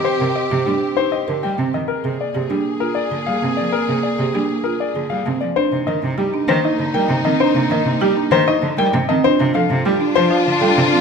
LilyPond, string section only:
\new Staff \with { instrumentName = "String section" } { \time 6/4 \key bes \mixolydian \tempo 4 = 196 <c' g'>1~ <c' g'>4. r8 | <bes aes'>1.~ | <bes aes'>1~ <bes aes'>4. r8 | \key c \minor <bes ees'>1.~ |
<bes ees'>1~ <bes ees'>4. r8 | <d' f'>1. | }